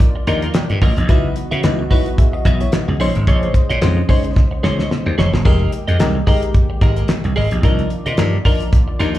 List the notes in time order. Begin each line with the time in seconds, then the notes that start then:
Already playing: D#3 A#3 F4 D5
0.00 muted clean electric guitar stroke, kick, closed hi-hat
0.16 muted clean electric guitar stroke
0.27 D#2 F3 D4 D#4 F4 A#4 D#5 C6, closed hi-hat
0.42 F4 A#4 D#5 A#5, closed hi-hat
0.54 G5, muted clean electric guitar stroke, snare, clap, closed hi-hat
0.70 G2, muted clean electric guitar stroke, closed hi-hat
0.81 A1 F4 A#4 D#5, kick, open hi-hat
0.97 A#1, muted clean electric guitar stroke, closed hi-hat
1.09 C#2 E3 F#3 B3 D#4 E4 F#4 B4 D#5 E5, kick, closed hi-hat
1.36 muted clean electric guitar stroke, closed hi-hat
1.51 C#3 F#4 B4 E5, closed hi-hat
1.63 C#2 F#3 D#4 E4 B4, snare, clap, closed hi-hat
1.79 muted clean electric guitar stroke
1.91 F#3 D#4 E4 F#4 B4 E5, kick, open hi-hat
2.06 muted clean electric guitar stroke, closed hi-hat
2.18 G#4 E5, muted clean electric guitar stroke, kick, closed hi-hat
2.33 F#4 D#5, muted clean electric guitar stroke
2.45 B1 F#4 B4 E5, kick, closed hi-hat
2.60 E4 F#4 B4 C#5 E5, closed hi-hat
2.72 D#4 B4, snare, clap, closed hi-hat
2.88 C#2 B3 G#4, muted clean electric guitar stroke
3.00 A#1 C#3 G#3 C#4 D#4 G#4 C5 C#5 D#5, open hi-hat
3.15 G#1, muted clean electric guitar stroke, closed hi-hat
3.27 A#1 G#4 C#5 D#5, kick, closed hi-hat
3.43 closed hi-hat
3.54 muted clean electric guitar stroke, kick, closed hi-hat
3.70 A#2 G#4 C#5 D#5, closed hi-hat
3.81 F2 G#3 C#4 D#4 C5, snare, clap, closed hi-hat
3.97 muted clean electric guitar stroke
4.09 G#3 C#4 D#4 G#4 C5 C#5 D#5, kick, open hi-hat
4.24 muted clean electric guitar stroke, closed hi-hat
4.36 muted clean electric guitar stroke, kick, snare
4.51 muted clean electric guitar stroke
4.63 C#2 G#3 C#4 D#4 G#4 C5 C#5 D#5, snare
4.79 G#4 C#5 D#5, snare
4.91 muted clean electric guitar stroke, snare
5.06 D#2, muted clean electric guitar stroke
5.18 F1 G#4 C#5 D#5, snare
5.33 G1, muted clean electric guitar stroke, snare
5.45 F1 D#3 G#3 A#3 D#4 G4 G#4 A#4 D#5, kick, splash
5.72 muted clean electric guitar stroke, closed hi-hat
5.88 F2 G#4 A#4 D#5, closed hi-hat
5.99 C2 G#3 D#4 G4 A#4, snare, clap, closed hi-hat
6.15 muted clean electric guitar stroke
6.27 G#3 D#4 G4 G#4 A#4 D#5, kick, open hi-hat
6.42 muted clean electric guitar stroke, closed hi-hat
6.54 muted clean electric guitar stroke, kick, closed hi-hat
6.70 muted clean electric guitar stroke
6.81 G#1 G#3 D#4 G4 G#4 A#4 D#5, kick, closed hi-hat
6.96 G#4 A#4 D#5, closed hi-hat
7.08 muted clean electric guitar stroke, snare, clap, closed hi-hat
7.24 C2, muted clean electric guitar stroke, closed hi-hat
7.36 G#1 G#4 A#4 D#5, open hi-hat
7.51 A#1, closed hi-hat
7.63 C2 D#3 F3 A#3 D4 D#4 F4 A#4 D5 D#5, kick, closed hi-hat
7.79 closed hi-hat
7.90 muted clean electric guitar stroke, closed hi-hat
8.06 C3 F4 A#4 D#5, closed hi-hat
8.17 G2 F3 D4 D#4 A#4, snare, clap, closed hi-hat
8.33 muted clean electric guitar stroke
8.45 F3 D4 D#4 F4 A#4 D#5, kick, open hi-hat
8.60 muted clean electric guitar stroke, closed hi-hat
8.72 muted clean electric guitar stroke, kick, closed hi-hat
8.88 muted clean electric guitar stroke
8.99 D#2 F3 D4 D#4 F4 A#4 D#5, closed hi-hat
9.15 A#4 D#5, closed hi-hat